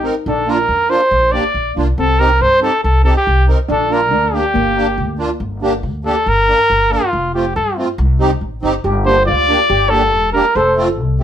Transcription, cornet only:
0.28 A4
0.50 A#4
0.90 C5
1.32 D5
1.99 A4
2.19 A#4
2.41 C5
2.62 A4
2.84 A4
3.04 A4
3.17 G4
3.72 A4
3.93 A#4
4.34 G4
6.05 A4
6.28 A#4
6.92 F4
7.34 G4
7.56 A4
9.05 C5
9.26 D5
9.89 A4
10.32 A#4
10.56 C5

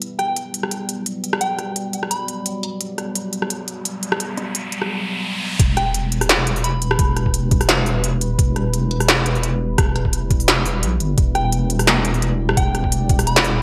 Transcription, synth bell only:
0.19 G5
0.28 G5
1.41 G5
2.11 B5
5.77 G5
5.86 G5
6.64 B5
11.35 G5
11.45 G5
12.57 G5
13.27 B5

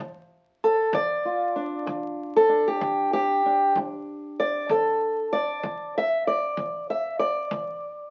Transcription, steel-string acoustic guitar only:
0.00 G2
0.64 A4
0.93 G2 D5
1.25 F4
1.56 D4
1.86 G2
2.36 A4
2.49 D4
2.68 G4
2.81 G2
3.13 G4
3.46 D4
3.77 G2
4.40 D5
4.70 G2 A4
5.33 D5
5.64 G2
5.98 E5
6.27 D5
6.57 G2
6.90 E5
7.19 D5
7.51 G2

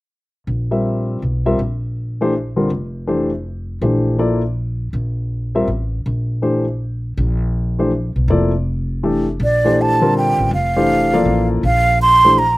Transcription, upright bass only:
0.47 A#1
1.22 B1
1.59 A#1
2.70 F1
3.81 A#1
4.93 A#1
5.67 A1
6.06 A#1
7.17 A#1
8.16 B1
8.28 F1
9.40 A#1
10.38 A1
10.51 F1
11.25 A1
11.63 A#1

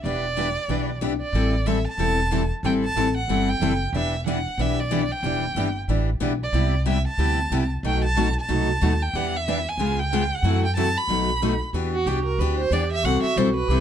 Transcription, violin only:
0.05 D5
1.21 D5
1.66 E5
1.88 A5
2.65 G5
2.84 A5
3.17 F#5
3.49 G5
3.95 E5
4.27 F#5
4.61 E5
4.80 D5
5.12 G5
6.43 D5
6.89 E5
7.08 A5
7.86 G5
8.04 A5
8.41 A5
9.02 G5
9.16 F#5
9.36 E5
9.69 G#5
9.99 G5
10.35 F#5
10.65 G5
10.77 A5
10.98 B5
11.95 F#4
12.07 G4
12.25 A#4
12.39 B4
12.59 C5
12.72 D5
12.92 E5
13.05 F#5
13.23 E5
13.37 C5
13.56 B4

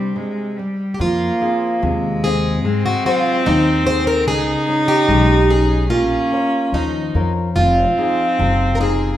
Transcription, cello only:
Already playing: G3
0.16 G#3
0.57 G3
1.00 A#3
1.83 G#3
2.65 C4
4.26 D#4
5.90 C#4
7.56 C4

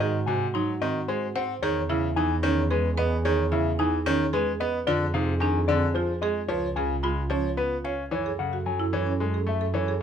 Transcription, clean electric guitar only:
0.00 D#5
0.26 G#5
0.54 C6
0.82 D#5
1.08 C5
1.36 F#5
1.62 C#5
1.90 E5
2.16 G#5
2.43 C#5
2.71 B4
2.99 D#5
3.25 C#5
3.53 E5
3.80 G#5
4.07 C#5
4.34 B4
4.60 D#5
4.87 D5
5.14 F5
5.41 G#5
5.68 D5
5.94 C5
6.22 D#5
6.48 C#5
6.76 G#5
7.03 B5
7.31 C#5
7.57 B4
7.85 F5
8.12 C#5
8.39 F#5
8.66 G#5
8.94 C#5
9.21 A4
9.49 E5
9.75 C#5

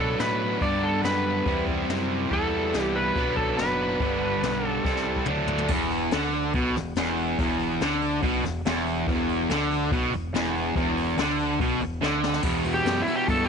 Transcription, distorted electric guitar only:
Already playing: B2 F#3 B3 D4
0.60 G2 D3 G3 B3 D4
1.46 C3 G3 C4 E4
2.30 E3 G3 B3 E4
3.16 B2 F#3 B3 D4
4.00 G2 D3 G3 B3 D4
4.84 C3 G3 C4 E4
5.27 D3 F#3 A3 D4
5.71 E2
6.13 D3
6.55 B2
6.76 E2
6.97 E2
7.39 E2
7.81 D3
8.23 B2
8.44 E2
8.66 E2
9.08 E2
9.50 D3
9.92 B2
10.13 E2
10.34 E2
10.76 E2
11.18 D3
11.61 B2
11.81 E2
12.01 D3
12.44 E2 B2
12.65 E2 B2
12.85 E2 B2
13.07 E2 B2
13.28 E2 B2

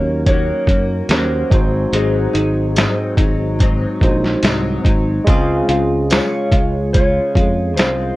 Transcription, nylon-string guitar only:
Already playing: A#3 C#4 F#4
0.26 D#3 A#3 C#4 F#4
0.68 A#3 C#4 F#4
1.10 D#3 A#3 C#4 F#4
1.51 C4 D#4
1.55 F#3
1.93 G#2 F#3 C4 D#4
2.33 C4 D#4
2.37 F#3
2.76 G#2 F#3 C4 D#4
3.17 F#3 C4 D#4
3.59 G#2 F#3 C4
3.63 D#4
4.01 F#3 C4 D#4
4.42 G#2 F#3 C4 D#4
4.84 F#3 C4 D#4
5.26 C#3 G#3 C4 F4
5.68 G#3 C4 F4
6.10 C#3 G#3 F4
6.51 F4
6.55 G#3
6.93 C#3 G#3
6.97 F4
7.35 F4
7.39 G#3
7.78 G#3 C4 F4

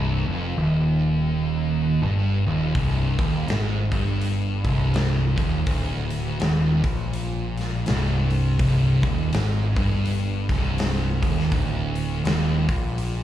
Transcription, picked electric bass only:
Already playing: C1
0.27 F1
0.57 D#1
2.02 G1
2.46 D#1
2.75 C1
3.19 D#1
3.48 G#1
3.92 G1
4.64 C1
5.38 D#1
5.67 D1
6.40 D#1
6.84 A#1
7.87 C1
8.59 C1
9.03 D#1
9.33 G#1
9.77 G1
10.50 C1
11.23 D#1
11.52 D1
12.24 D#1
12.69 A#1

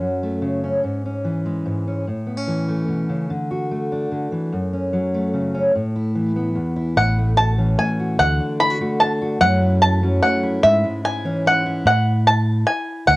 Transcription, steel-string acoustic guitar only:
Already playing: F#2 C#4
0.01 F#3
0.23 A3
0.42 C#3
0.64 C#4
0.84 G#2
1.06 C#4
1.24 E3
1.46 G#3
1.66 G#2
1.87 C#4
2.07 A2
2.27 B3
2.37 C#4
2.47 E3
2.68 A3
2.88 B2
3.09 C#3
3.30 D3
3.51 F#4
3.71 A3
3.92 D4
4.12 D3
4.32 E3
4.52 F#2
4.73 C#4
4.93 F#3
5.14 A3
5.34 C#3
5.54 C#4
5.75 A2
5.96 E4
6.15 E3
6.36 B3
6.55 E2
6.76 E4
6.96 A2
7.18 A3
7.37 F#4
7.58 E3 C#4
7.80 A3
8.00 F#4
8.19 D3
8.40 D4
8.60 E4
8.70 F#4
8.80 A3 F#4
9.02 D4
9.22 F#4
9.40 F#2 F#3 A3 C#4 E4
9.62 A3
9.83 E4
10.03 F#3 C#4
10.23 A3
10.43 E4
10.63 G#2
10.84 G#3
11.04 E4
11.25 E3 C#4
11.46 G#3
11.66 E4

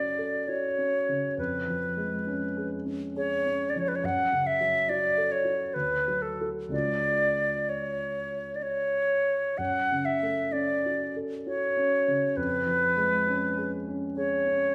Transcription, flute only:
Already playing: D5
0.48 C#5
1.38 B4
3.17 C#5
3.70 D5
3.79 C#5
3.88 B4
3.96 C#5
4.05 F#5
4.47 E5
4.89 D5
5.32 C#5
5.74 B4
6.22 A4
6.73 D5
7.69 C#5
8.56 D5
8.63 C#5
9.58 F#5
10.05 E5
10.52 D5
11.47 C#5
12.37 B4
14.16 C#5

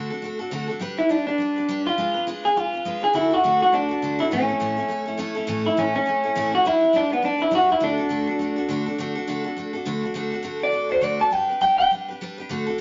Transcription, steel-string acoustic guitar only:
Already playing: D3 A3 D4 F#4
0.10 D4 F#4 A4
0.22 A3 D4 F#4 A4
0.39 D4 F#4 A4
0.51 D3 A3 D4 F#4 A4
0.68 D4 F#4 A4
0.79 G3 D4 G4 B4
0.97 D4 G4 B4
1.09 G3 D4 G4 B4
1.27 D4 G4 B4
1.38 G3 D4 G4 B4
1.56 D4 G4 B4
1.68 G3 D4 G4 B4
1.86 D4 G4 B4
1.98 G#3 D4 F4 B4
2.14 D4 F4 B4
2.27 G#3 D4 F4 B4
2.44 D4 F4 B4
2.56 G#3 D4 F4 B4
2.73 D4 F4 B4
2.85 G#3 D4 F4 B4
3.01 D4 F4 B4
3.13 D3 A3 D4 F#4 A4
3.31 D4 F#4 A4
3.44 D3 A3 D4 F#4 A4
3.60 D4 F#4 A4
3.72 A3 D4 F#4 A4
3.89 D4 F#4 A4
4.02 D3 A3 D4 F#4 A4
4.19 D4 F#4 A4
4.31 A2 E3 A3 C#4 E4 A4
4.48 A3 C#4 E4 A4
4.60 A2 E3 A3 C#4 E4 A4
4.76 A3 C#4 E4 A4
4.88 A3 C#4 E4 A4
5.05 A3 C#4 E4 A4
5.17 A2 E3 A3 C#4 E4 A4
5.35 A3 C#4 E4 A4
5.47 A2 E3 A3 C#4 E4 A4
5.65 A3 C#4 E4 A4
5.77 A2 E3 A3 C#4 E4 A4
5.94 A3 C#4 E4 A4
6.06 A3 C#4 E4 A4
6.24 A3 C#4 E4 A4
6.35 A2 E3 A3 C#4 E4 A4
6.53 A3 C#4 E4 A4
6.65 G3 D4 G4 B4
6.81 D4 G4 B4
6.93 G3 D4 G4 B4
7.09 D4 G4 B4
7.22 G3 D4 G4 B4
7.38 D4 G4 B4
7.51 G3 D4 G4 B4
7.68 D4 G4 B4
7.80 D3 A3 D4 F#4 A4
7.97 D4 F#4 A4
8.09 D3 A3 D4 F#4 A4
8.27 D4 F#4 A4
8.39 A3 D4 F#4 A4
8.56 D4 F#4 A4
8.68 D3 A3 D4 F#4 A4
8.86 D4 F#4 A4
8.98 D3 A3 D4 F#4 A4
9.15 D4 F#4 A4
9.27 D3 A3 D4 F#4 A4
9.44 D4 F#4 A4
9.57 A3 D4 F#4 A4
9.73 D4 F#4 A4
9.85 D3 A3 D4 F#4 A4
10.03 D4 F#4 A4
10.14 D3 A3 D4 F#4 A4
10.32 D4 F#4 A4
10.43 D3 A3 D4 F#4 A4
10.60 D4 F#4 A4
10.72 A3 D4 F#4 A4
10.89 D4 F#4 A4
11.01 D3 A3 D4 F#4 A4
11.19 D4 F#4 A4
11.31 G3 D4 G4 B4
11.49 D4 G4 B4
11.61 G3 D4 G4 B4
11.79 D4 G4 B4
11.91 G3 D4 G4 B4
12.08 D4 G4 B4
12.21 G3 D4 G4 B4
12.38 D4 G4 B4
12.49 D3 A3 D4 F#4 A4
12.66 D4 F#4 A4

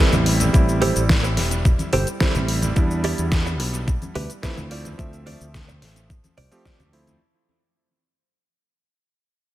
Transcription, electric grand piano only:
0.00 G3 C4 E4
0.53 G3 C4 E4
2.20 G3 C4 E4
2.76 G3 B3 D4 E4
4.42 F3 A3 C4 E4
4.98 F3 A3 C4 E5
6.51 F3 A3 C4 G4
6.93 F3 A3 C4 E4

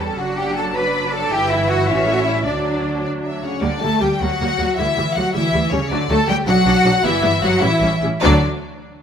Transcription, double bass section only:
Already playing: E2
0.19 F#1
1.32 G1
1.88 A1
2.46 D2
3.62 D2
3.82 D2
4.02 D2
4.21 D2
4.41 D2
4.59 D2
4.78 D2
4.97 D2
5.16 D2
5.34 D2
5.53 D2
5.72 D2
5.90 D2
6.09 D2
6.28 D2
6.47 B1
6.66 B1
6.84 B1
7.04 G1
7.23 G1
7.43 G1
7.62 A1
7.82 A1
8.03 A1
8.23 D2

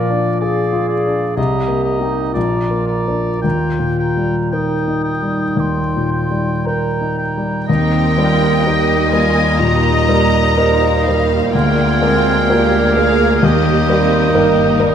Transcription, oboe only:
Already playing: D5
0.40 D5
0.89 D5
1.37 D#5
1.84 D#5
2.33 D5
2.86 D5
3.41 G5
3.99 G5
4.51 G5
5.04 G5
5.59 G5
6.11 G5
6.67 G5
7.18 G5
7.67 D#5
11.54 F5
13.44 D#5

